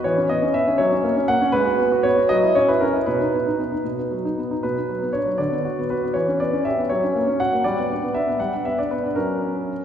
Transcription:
0.04 E3 C#5
0.17 C#4
0.29 B3 D#5
0.42 C#4
0.54 B3 E5
0.67 C#4
0.78 F#3 C#5
0.92 C#4
1.04 A#3
1.16 C#4
1.28 A#3 F#5
1.41 C#4
1.52 G#3 B4
1.65 F#4
1.78 B3
1.92 F#4
2.03 B3 C#5
2.17 F#4
2.29 F#3 D#5
2.43 E4
2.55 C#4 C#5
2.68 E4 B4
2.81 C#4 A#4
2.94 E4
3.06 B2 B4
3.20 D#4
3.33 B3
3.46 D#4
3.59 B3
3.72 D#4
3.85 B2
3.99 B3
4.11 F#3
4.25 D#4
4.38 B3
4.51 D#4
4.63 B2 B4
4.77 B3
4.89 F#3
5.02 B3
5.13 D4 C#5
5.26 F#3
5.38 D3 D5
5.51 B3
5.65 F#4
5.79 B3
5.90 F#4 B4
6.03 B3
6.14 E3 C#5
6.28 C#4
6.40 B3 D5
6.53 C#4
6.65 G4 E5
6.78 B3
6.89 F#3 C#5
7.04 C#4
7.15 A#3
7.27 C#4
7.40 F#4 F#5
7.53 A#3
7.64 G3 D5
7.79 B3
7.90 D4
8.04 B3
8.14 D4 E5
8.28 B3
8.40 G3 F#5
8.54 D4
8.65 B3 E5
8.79 D4 D5
8.91 B3 B4
9.04 D4
9.16 F#3 C#4 F#4 A#4

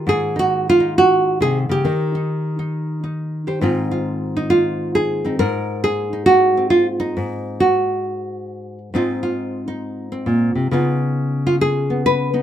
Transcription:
Already playing: D#3 D#4
0.07 G#2 G#4
0.36 D#4 F#4
0.69 F4
0.80 D#4
0.98 F#4
1.40 C3 G#4
1.69 C#3 G4
1.85 D#3 D#4
2.15 D#4
2.59 D#4
3.04 D#4
3.47 G4 C5
3.61 G#2 C4 D#4 F4
3.91 F4
4.37 D#4
4.50 F4
4.95 G#4
5.25 C4 D#4
5.39 G#2 A#4
5.84 G#4
6.13 D#4
6.26 F#4
6.57 C4
6.70 F4
7.00 D#4
7.17 G#2
7.60 F#4
8.94 G#2 C4 D#4 F4
9.23 F4
9.68 D#4
10.12 C4
10.26 A#2
10.55 C3
10.71 C#3 B3 D#4 F4
11.47 F4
11.61 G#4
11.90 B3
12.06 B4
12.34 B3 D#4

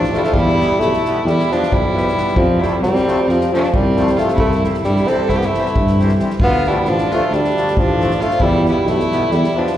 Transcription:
Already playing: F3 D4
0.04 snare
0.12 D3 F3 A3 D4 F4, snare
0.18 G3 E4
0.23 A3 F4, snare
0.33 E2 G3 E4, kick
0.59 B2 E3 G3 B3, snare
0.79 B1 A3 E4, snare
0.93 snare
1.05 B2 E3 G3 B3, snare
1.24 E2 G3, snare
1.29 E4
1.39 snare
1.49 B2 E3 F3 G3 B3 D4, snare
1.63 snare
1.72 B1 G3 E4, kick
1.93 B2 E3 G3 B3, snare
2.08 snare
2.15 B2 E3 G3 B3, snare
2.28 snare
2.35 F2 F3 C4, kick
2.59 C3 F3 G3 A3 C4 E4, snare
2.81 C2 G3 C4, snare
2.95 snare
3.05 C3 F3 A3 C4, snare
3.27 F2 F3 C4, snare
3.40 snare
3.52 C3 F3 A3 C4 D4, snare
3.63 snare
3.74 C2 G3 C4, kick
3.96 C3 F3 A3 C4, snare
4.07 snare
4.16 C3 F3 A3 C4 F4, snare
4.28 snare
4.36 C2 A3 E4, kick
4.52 snare
4.63 C3 E3 G3 C4, snare
4.74 snare
4.82 G2 G3 E4, snare
4.96 snare
5.07 C3 E3 G3 C4 A4, snare
5.11 C4
5.29 C2 A3 E4, kick, snare
5.36 B3 G4
5.41 snare
5.45 A3 E4
5.54 C3 E3 G3 C4, snare
5.66 snare
5.75 G2, kick
5.87 snare
5.99 C3 E3 G3 C4, snare
6.08 snare
6.19 C3 E3 G3 C4, snare
6.30 snare
6.40 D2 F4, kick
6.44 B3
6.64 D3 F3 A3 D4 E4, snare
6.69 G3
6.85 A1 F3 D4, snare
6.97 snare
7.10 D3 F3 A3 D4 F4, snare
7.30 D2 G3 D4, snare
7.44 snare
7.55 D3 F3 A3 D4, snare
7.68 snare
7.76 A1 F3 D4, kick
7.99 D3 F3 A3 D4, snare
8.10 snare
8.21 D3 F3 A3 D4 F4, snare
8.30 snare
8.40 E2 G3 E4, kick
8.65 B2 E3 G3 B3 E4, snare
8.69 G3
8.85 B1 A3, snare
8.90 E4
8.99 snare
9.10 B2 E3 G3 B3, snare
9.30 E2 G3 E4, snare
9.44 snare
9.54 B2 E3 F3 G3 B3
9.58 D4
9.66 snare

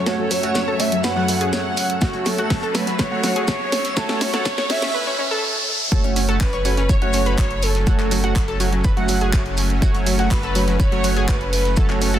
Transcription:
Already playing: F#2 F#3 A3 C#4 C#5 E5, riser
0.06 A3 F#4 A4 C#5, snare, closed hi-hat, shaker
0.19 F#3
0.31 F#3 C#5, open hi-hat, shaker
0.43 A3 F#4 F#5, closed hi-hat
0.54 F#3, snare, closed hi-hat, shaker
0.68 A4
0.79 F#3 A3 F#4 C#5 E5, open hi-hat, shaker
0.92 F#3, closed hi-hat
1.04 B4 F#5, snare, closed hi-hat, shaker
1.16 F#3 A3 F#4 F#5
1.28 F#3, open hi-hat, shaker
1.41 G#4, closed hi-hat
1.52 A3 F#4 C#5 F#5, snare, closed hi-hat, shaker
1.77 open hi-hat, shaker
1.90 closed hi-hat
2.01 A3 F#4 C#5, kick, snare, closed hi-hat, shaker
2.13 F#3, closed hi-hat
2.25 F#3 A4, snare, open hi-hat, shaker
2.38 A3 F#4 F#5, closed hi-hat
2.50 F#3, kick, snare, closed hi-hat, open hi-hat
2.63 A4, closed hi-hat
2.74 F#3 A3 F#4 B4 C#5, snare, open hi-hat, shaker
2.87 F#3, snare, closed hi-hat
2.99 B4 C#5, kick, snare, closed hi-hat, shaker
3.12 F#3 A3 F#4 F#5
3.23 F#3, snare, open hi-hat, shaker
3.36 G#4, closed hi-hat
3.48 A3 F#4 C#5, kick, snare, closed hi-hat, shaker
3.72 snare, open hi-hat, shaker
3.84 snare, closed hi-hat
3.97 A3 F#4 A4 C#5, kick, snare, closed hi-hat, shaker
4.09 C#4, snare
4.21 C#4 C#5, snare, open hi-hat, shaker
4.34 A3 F#4 A4 F#5, snare, closed hi-hat
4.45 C#4, kick, snare, closed hi-hat, shaker
4.58 C#5, snare
4.70 A3 C#4 F#4 C#5 E5, snare, open hi-hat
4.75 snare, open hi-hat
4.82 C#4, snare, closed hi-hat, open hi-hat
4.88 snare, open hi-hat
4.94 B4
5.07 C#4
5.19 C#4
5.31 A4
5.92 F#1 F#3 A3 C#4 F#4 A4 C#5, kick, closed hi-hat, shaker
6.04 C#4, closed hi-hat
6.16 C#4, open hi-hat, shaker
6.29 A3 F#4 A4 F#5, closed hi-hat
6.40 C#4 B4, kick, snare, clap, closed hi-hat, open hi-hat
6.53 C#5, closed hi-hat
6.65 A3 C#4 F#4 C#5, open hi-hat, shaker
6.77 C#4, snare, closed hi-hat
6.89 C#5, kick, closed hi-hat, shaker
7.02 A3 C#4 F#4 F#5, closed hi-hat
7.13 C#4, open hi-hat, shaker
7.26 B4, closed hi-hat
7.38 A3 F#4 C#5, kick, snare, clap, closed hi-hat, shaker
7.51 closed hi-hat
7.62 A4, open hi-hat, shaker
7.75 snare, closed hi-hat
7.87 A3 F#4 C#5, kick, closed hi-hat, shaker
7.99 F#3, clap, closed hi-hat
8.11 F#3, open hi-hat, shaker
8.24 A3 F#4 F#5, closed hi-hat
8.36 F#3, kick, snare, clap, closed hi-hat, shaker
8.48 A4, closed hi-hat
8.60 F#3 A3 F#4 C#5, open hi-hat, shaker
8.73 F#3, closed hi-hat
8.84 B4, kick, closed hi-hat, shaker
8.97 F#3 A3 F#4 F#5, closed hi-hat
9.08 F#3, open hi-hat, shaker
9.21 G#4, closed hi-hat
9.33 A3 F#4 C#5, kick, snare, clap, closed hi-hat, shaker
9.46 closed hi-hat
9.57 open hi-hat, shaker
9.70 closed hi-hat
9.82 A3 F#4 C#5, kick, closed hi-hat, shaker
9.94 F#3, closed hi-hat
10.06 F#3, open hi-hat, shaker
10.19 A3 F#4 F#5, closed hi-hat
10.30 F#3 B4, kick, snare, clap, closed hi-hat, open hi-hat
10.43 A4, closed hi-hat
10.55 F#3 A3 F#4 C#5, open hi-hat, shaker
10.68 F#3, snare, closed hi-hat
10.79 B4 C#5, kick, closed hi-hat, shaker
10.92 F#3 A3 F#4 F#5, closed hi-hat
11.04 F#3, open hi-hat, shaker
11.17 G#4, closed hi-hat
11.28 A3 F#4 B4 C#5, kick, snare, clap, closed hi-hat, shaker
11.41 closed hi-hat
11.52 B4, open hi-hat, shaker
11.65 snare, closed hi-hat
11.76 A3 F#4 A4 C#5, kick, closed hi-hat, shaker
11.90 C#4, clap, closed hi-hat
12.01 C#4, open hi-hat, shaker
12.14 A3 F#4 A4 F#5, closed hi-hat

